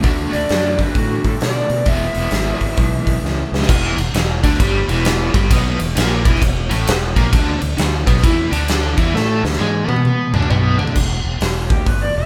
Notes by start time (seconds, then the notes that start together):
0.03 D2 D3 A3 D4 F#4, kick, open hi-hat
0.33 D2 D5, open hi-hat
0.49 F#2, snare, open hi-hat
0.79 B4, kick, open hi-hat
0.95 A2 F#4, kick, open hi-hat
1.25 A2 A4, kick, open hi-hat
1.41 B2 D5, snare, open hi-hat
1.70 B2, open hi-hat
1.86 E1 E3 G#3 B3 E4 E5, kick, open hi-hat
2.15 E1, open hi-hat
2.31 G#1, snare, open hi-hat
2.61 G#1, kick, open hi-hat
2.77 B1, kick, open hi-hat
3.07 B1, kick, open hi-hat
3.22 C#2, snare
3.52 C#2, snare
3.62 snare
3.69 E1 E2 E3, kick, crash
3.97 E1 E2, ride
4.13 E1 E2, snare, ride
4.43 D2 D3 D4, kick, ride
4.54 snare
4.60 G1 G2 G3, kick, ride
4.88 E1 E2 E3, ride
5.05 snare, ride
5.34 G1 G2 G3, kick, ride
5.50 B1 B2 B3, kick, ride
5.79 E1 E2, ride
5.96 A#1 A#2 A#3, snare, ride
6.25 E1 E2 E3, kick, ride
6.35 snare
6.41 E1 E2, kick, ride
6.69 A1 A2 A3, ride
6.86 E1 E2, snare, ride
7.16 A#1 A#2 A#3, kick, ride
7.32 D2 D3 D4, kick, ride
7.62 D2 D3, ride
7.77 D2 D3, snare, ride
8.06 B1 B2 B3, kick, ride
8.17 snare
8.23 E2 E3 E4, kick, ride
8.51 D2 D3 D4, ride
8.68 snare, ride
8.97 E2 E3 E4, kick, ride
9.14 A2 A3 A4, snare
9.42 D2 D3, snare
9.53 snare
9.59 G#2 G#3 G#4, high tom
9.87 B2 B3 B4, high tom
9.96 mid tom
10.05 mid tom
10.33 D2 D3 D4, mid tom
10.42 mid tom
10.50 B1 B2 B3, mid tom
10.78 D2 D3 D4, floor tom
10.87 floor tom
10.96 E1, kick, crash
11.24 E1
11.41 E1, snare, open hi-hat
11.70 D2 G4, kick
11.86 G1 B4, kick, open hi-hat
12.02 D5
12.16 E1 E5